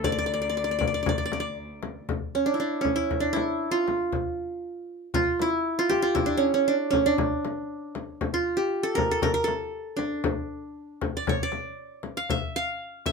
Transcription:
Already playing: D2 A4
0.04 D5, frame drum
0.12 D5
0.18 D5
0.26 D5
0.34 D5
0.42 D5
0.49 D5
0.57 D5
0.64 D5
0.71 D5
0.79 D5, frame drum
0.87 D5
0.94 D5
1.03 D5, frame drum
1.09 D5
1.18 D5
1.26 D5
1.32 D5, frame drum
1.40 D5
1.83 frame drum
2.09 frame drum
2.35 C#4
2.46 D4
2.54 E4
2.60 D4
2.81 C#4, frame drum
2.96 E4
3.11 frame drum
3.20 D4
3.33 E4, frame drum
3.71 F4
3.88 frame drum
4.13 frame drum
5.14 F4, frame drum
5.40 E4, frame drum
5.79 F4
5.89 G4, frame drum
6.02 F4
6.15 E4, frame drum
6.26 D4
6.37 C#4
6.54 C#4
6.68 D4
6.91 C#4, frame drum
7.06 D4
7.18 frame drum
7.45 frame drum
7.95 frame drum
8.21 frame drum
8.34 F4
8.57 G4
8.83 A4
8.95 A#4, frame drum
9.11 A4
9.22 A#4, frame drum
9.34 A#4
9.44 A4, frame drum
9.97 D4, frame drum
10.24 frame drum
11.01 frame drum
11.17 D5
11.27 C#5, frame drum
11.43 D5
11.52 frame drum
12.03 frame drum
12.17 F5
12.30 E5, frame drum
12.56 F5
13.06 E5, frame drum

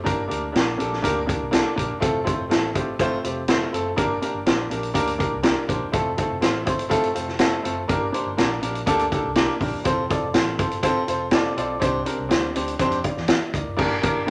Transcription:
0.04 G1 A#3 D4 G4 A#4, kick, closed hi-hat
0.28 D2 A#3 D4 G4 A#4, closed hi-hat
0.52 A#1 A#3 D4 G4 A#4, snare, closed hi-hat
0.77 A#1 A#3 D4 G4 A4, closed hi-hat
0.93 snare
1.02 D2 A#3 D4 G4 A#4, kick, closed hi-hat
1.26 A#3 D4 G4 A#4, kick, closed hi-hat
1.41 C2
1.51 A#3 D4 G4 A4, snare, closed hi-hat
1.76 A#1 A#3 D4 G4 A#4, kick, closed hi-hat
1.90 E1
2.00 F1 A3 C4 F4 A4, kick, closed hi-hat
2.24 A3 C4 F4 C5, kick, closed hi-hat
2.39 F1
2.49 A1 A3 C4 F4 A4, snare, closed hi-hat
2.74 G1 A3 C4 F4 G4, kick, closed hi-hat
2.99 A3 C4 F4 C5, kick, closed hi-hat
3.23 F1 A3 C4 F4 G4, closed hi-hat
3.48 A3 C4 F4 C5, snare, closed hi-hat
3.72 F#1 A3 C4 F4 A4, closed hi-hat
3.96 G1 A#3 D4 G4 A#4, kick, closed hi-hat
4.22 A#3 D4 G4 A#4, closed hi-hat
4.34 G1
4.46 A#1 A#3 D4 G4 C5, snare, closed hi-hat
4.70 A#1 A#3 D4 G4 A#4, closed hi-hat
4.83 closed hi-hat
4.94 D2 A#3 D4 G4 A#4, kick, closed hi-hat
5.07 closed hi-hat
5.18 A#3 D4 G4 A#4, kick, closed hi-hat
5.33 C2
5.43 A#3 D4 G4 A#4, snare, closed hi-hat
5.68 A#1 A#3 D4 G4 C5, kick, closed hi-hat
5.82 E1
5.92 F1 A3 C4 F4 A4, kick, closed hi-hat
6.17 A3 C4 F4 A4, kick, closed hi-hat
6.30 F1
6.41 A1 A3 C4 F4 C5, snare, closed hi-hat
6.65 G1 A3 C4 F4 C5, kick, closed hi-hat
6.79 closed hi-hat
6.89 A3 C4 F4 A4, kick, closed hi-hat
7.03 closed hi-hat
7.14 F1 A3 C4 F4 A4, closed hi-hat
7.28 snare
7.39 A3 C4 F4 A4, snare, closed hi-hat
7.63 F#1 A3 C4 F4 A4, closed hi-hat
7.88 G1 A#3 D4 G4 A#4, kick, closed hi-hat
8.12 A#3 D4 G4 C5, closed hi-hat
8.26 G1
8.37 A#1 A#3 D4 G4 A#4, snare, closed hi-hat
8.61 A#1 A#3 D4 G4 A#4, closed hi-hat
8.75 closed hi-hat
8.86 D2 A#3 D4 G4 A4, kick, closed hi-hat
8.99 closed hi-hat
9.11 A#3 D4 G4 A4, kick, closed hi-hat
9.25 C2
9.35 A#3 D4 G4 A#4, snare, closed hi-hat
9.60 A#1 A#3 D4 G4 A#4, kick, open hi-hat
9.73 E1
9.84 F1 C4 F4 A4 C5, kick, closed hi-hat
10.09 C4 F4 A4 D5, kick, closed hi-hat
10.22 F1
10.34 A1 C4 F4 A4 C5, snare, closed hi-hat
10.58 G1 C4 F4 A4 C5, kick, closed hi-hat
10.71 closed hi-hat
10.83 C4 F4 A4 C5, kick, closed hi-hat
11.07 F1 C4 F4 A4 C5, closed hi-hat
11.31 C4 F4 A4 D5, snare, closed hi-hat
11.57 B1 C4 F4 A4 D5, closed hi-hat
11.80 C2 C4 D4 G4 C5, kick, closed hi-hat
12.05 C4 D4 G4 A#4, closed hi-hat
12.19 C2
12.29 D2 C4 D4 G4 C5, snare, closed hi-hat
12.54 D2 C4 D4 G4 C5, closed hi-hat
12.68 closed hi-hat
12.79 F2 C4 D4 G4 C5, kick, closed hi-hat
12.92 closed hi-hat
13.04 D5 F5, kick, closed hi-hat
13.17 E2, snare
13.28 E5 G5, snare, closed hi-hat
13.54 D2 A#4 D5, kick, closed hi-hat
13.67 F#1
13.77 G1 A#3 D4 G4 A#4, kick, crash
14.02 A#3 D4 G4 A#4, kick, closed hi-hat
14.16 G1
14.26 A#3 D4

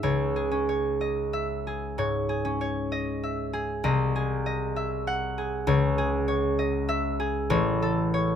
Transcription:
Already playing: C#4 G#4 E5
0.03 C#2 C#5
0.36 G#4
0.51 C#4
0.69 C#5
1.01 D#5
1.33 E5
1.67 G#4
1.98 G#2 C#5
2.29 G#4
2.45 C#4
2.61 C#5
2.92 D#5
3.23 E5
3.53 G#4
3.84 C2 D#5
4.16 G#4
4.46 D#5
4.76 E5
5.07 F#5
5.38 G#4
5.67 C#2 C#5
5.98 G#4
6.28 C#5
6.59 D#5
6.89 E5
7.20 G#4
7.50 A1 C#5
7.82 A4
8.14 C#5

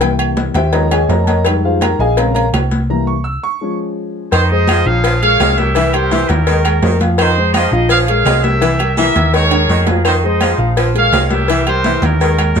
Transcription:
Already playing: C2
0.00 E3 G3 A#3 G5, cowbell, high conga, low agogo
0.19 high conga, low agogo, claves
0.37 cowbell, high conga, low timbale
0.54 D#2 G4 C5 E5 G5, cowbell, high conga, low agogo
0.73 F3 G#3 C#4 A#4 C#5 D#5 A#5, cowbell, high conga, low agogo
0.91 G#4 C#5 D#5 G#5, cowbell, high conga, low agogo, claves
1.09 F2 A#4 C#5 D#5 A#5, cowbell, high conga, low timbale
1.24 A5, cowbell, high conga, low agogo
1.29 A#4 C#5 D#5 A#5
1.45 G3 G#3 D#4, cowbell, low agogo, claves
1.64 F4 G#4 C5 F5, high conga
1.81 A#4 A#5, cowbell, high conga, low timbale, low agogo, claves
1.99 A#1 G#4 D#5 F5 G#5, high conga
2.17 C#3 G#3 C4 A#4 C#5 F5 A#5, cowbell, high conga, low agogo
2.35 A#4 C#5 F5 A#5, high conga, low agogo
2.53 C2, cowbell, high conga, low timbale, low agogo, claves
2.71 cowbell, high conga
2.90 E3 G3 A#3 A#5
3.07 C#6
3.24 E6
3.43 C#6
3.61 F3 G#3 C#4
4.32 F2 D#3 D#4 G#4 C5, cowbell, high conga, low agogo, claves
4.50 G#3 G#4 C5 D#5, high conga
4.67 F3, cowbell, high conga, low timbale, low agogo, claves
4.85 A#1 F3 F4 G#4 C#5 F5, high conga
5.04 F3, cowbell, high conga, low agogo
5.22 G#3 G#4 A#4 C#5 F5, high conga, low agogo
5.40 C2 G#3, cowbell, high conga, low timbale, low agogo, claves
5.57 G3 G4 A#4 E5, cowbell, high conga
5.75 E3 E4 E5, cowbell, high conga, low agogo
5.93 G3 E4 G4 A#4 C5, high conga, low agogo, claves
6.11 E3 E4 E5, cowbell, high conga, low timbale
6.28 D#2 C#4 A#4, cowbell, high conga, low agogo
6.47 D#3 G#3 G#4 A#4, cowbell, high conga, low agogo
6.65 G#3 G#4 A#4, cowbell, high conga, low agogo, claves
6.83 F2 D#3, cowbell, high conga, low timbale
7.00 F3 F4 F5, cowbell, high conga, low agogo
7.18 D#3 D#4 G#4 C5, cowbell, high conga, low agogo, claves
7.37 G#3 G#4 C5, high conga
7.53 F3 D#5, cowbell, high conga, low timbale, low agogo, claves
7.71 A#1 F3 F4 D#5 F5, high conga
7.89 F3 G#4 C#5 F5, cowbell, high conga, low agogo
8.06 G#3 G#4 A#4 C#5 F5, high conga, low agogo
8.25 C2 G#3, cowbell, high conga, low timbale, low agogo, claves
8.43 G3 G4 A#4 E5, cowbell, high conga
8.61 E3 E4 E5, cowbell, high conga, low agogo
8.79 G3 G4 A#4, high conga, low agogo, claves
8.97 E3 E4 G4 A#4 E5, cowbell, high conga, low timbale
9.16 D#2, cowbell, high conga, low agogo
9.33 D#3 G#3 G#4 A#4 C#5, cowbell, high conga, low agogo
9.51 G#3 G#4 A#4, cowbell, high conga, high timbale, low agogo, claves
9.69 F2 D#3, cowbell, high conga
9.87 F3 F4 F5, cowbell, high conga, low timbale, low agogo
10.04 D#3 D#4 G#4 C5, cowbell, high conga, low agogo, claves
10.23 G#3 G#4 C5 D#5, high conga
10.41 F3, cowbell, high conga, low timbale, low agogo, claves
10.58 A#1 F3 F4 F5, high conga
10.77 F3, cowbell, high conga, low agogo
10.95 G#3 G#4 A#4 C#5, high conga, low agogo
10.99 F5
11.13 C2 G#3, cowbell, high conga, low timbale, low agogo, claves
11.25 F5
11.30 G3 G4 A#4 E5, cowbell, high conga
11.48 E3 E4 E5, cowbell, high conga, low agogo
11.67 G3 E4 G4 A#4 C5, high conga, low agogo, claves
11.84 E3 E4 E5, cowbell, high conga, low timbale
12.02 D#2 C#4 A#4, cowbell, high conga, low agogo
12.20 D#3 G#3 G#4 A#4, cowbell, high conga, low agogo
12.38 G#3 G#4 A#4, cowbell, high conga, low agogo, claves
12.56 F2 D#3, cowbell, high conga, low timbale

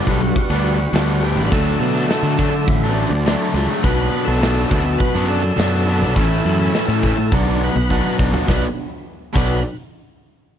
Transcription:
Already playing: G2 G3 B3 D4 B4
0.07 B1 D3 G3 B3 D4 F#4, kick
0.11 G3
0.22 muted overdriven electric guitar stroke
0.36 kick, open hi-hat
0.50 D2 G3 B3 D4
0.79 muted overdriven electric guitar stroke
0.93 D2 G2 D3 G3 B3 D4, snare, open hi-hat
1.22 D3 G3 A3 B3 D4 G4
1.36 A1 G3 B3 D4
1.45 D4 B4
1.51 D2 D3 F#3 A3 D4 A4, kick, open hi-hat
1.80 B2
1.95 F#3 A3 D4
2.08 D3 F#3 A3 D4 A4, snare, open hi-hat
2.23 D3
2.38 D3 F#3 A3 D4, kick
2.54 muted overdriven electric guitar stroke
2.65 A1 E4, kick, open hi-hat
2.70 A3
2.83 F#3 A3 D4
2.88 D3 B3
2.94 D4
3.00 D3
3.10 D2, muted overdriven electric guitar stroke
3.25 D3 F#3 A3 D4, snare, open hi-hat
3.54 C#2 D3 F#3 A3 D4
3.69 F#3 A3 D4
3.83 B1 B2 F#3 B3 D4 B4, kick, open hi-hat
4.25 B1 A3 B3 D4 A4
4.29 F#3
4.41 B2 F#3 B3 D4, snare, open hi-hat
4.68 D2 B2 F#3 B3 D4 A4, kick
4.72 A3
4.85 muted overdriven electric guitar stroke
4.98 B3 B4, kick, open hi-hat
5.14 F#2 F#3 B3 D4
5.28 D4 A4
5.42 muted overdriven electric guitar stroke
5.56 F#2 B2 F#3 B3 D4, snare, open hi-hat
5.74 snare
5.87 B2 F#3 B3 D4
6.01 B1 F#3 B3 D4
6.15 A1 A2 E3 F3 A3 A#3 C#4 D4 E4 A4 A#4, kick, open hi-hat
6.36 E3 A3 C#4 A4
6.46 F#2
6.59 A3 C#4 E4 A4
6.74 A2 E3 A3 C#4 E4, snare, open hi-hat
6.88 A2
7.03 E3 A3 C#4 E4 A4, kick
7.18 muted overdriven electric guitar stroke
7.31 B1 B2 F#3 B3 D4 F#4 B4, kick, open hi-hat
7.36 D3
7.47 B3 D4 F#4
7.64 B3 B4
7.76 B1, muted overdriven electric guitar stroke
7.90 B2 F#3 B3 D4 F#4, kick
8.18 B1 F#3 B3 D4 F#4, kick
8.32 B3 D4 F#4, floor tom
8.46 B1 B2 F#3 B3 D4 B4, kick, snare
9.33 B1 B2 F#3 B3 D4 B4, kick, crash

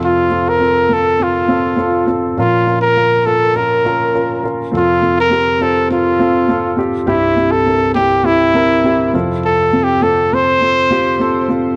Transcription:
Already playing: F2 C3 C4 F4 A4
0.04 F4
0.30 C4 F4 A4
0.49 A#4
0.60 C4 F4 A4
0.89 C4 F4 A4
1.19 C4 F4 A4
1.23 F4
1.48 C4 F4 A4
1.77 C4 F4 A4
2.07 C4 F4 A4
2.37 A#2 F3 C#4 F4 A#4
2.66 C#4 F4 A#4
2.82 A#4
2.96 C#4 F4 A#4
3.26 C#4 F4 A4 A#4
3.55 C#4 F4 A#4
3.85 C#4 F4 A#4
4.14 C#4 F4 A#4
4.43 C#4 F4 A#4
4.71 F2 C3 C4 F4 A4
4.77 F4
5.02 C4 F4 A4
5.20 A#4
5.30 C4 F4 G4
5.60 C4 F4 A4 C5
5.90 C4 F4 A4
6.20 C4 F4 A4
6.48 C4 F4 A4
6.76 C4 F4 G4
7.06 C2 G2 C4 E4 G4
7.36 C4 E4 G4
7.52 A4
7.66 C4 E4 A#4
7.95 C4 E4 G4
8.24 C4 E4 G4
8.54 C4 E4 A#4
8.84 C4 E4 G4
9.14 F2 C3 C4 F4 A4
9.45 A4
9.73 C4 F4 A4
9.84 G4
10.02 C4 F4 A4
10.32 C4 F4 A4 C5
10.61 C4 F4 A4
10.91 C4 F4 G4
11.20 C4 F4 A4
11.49 C4 F4 A4

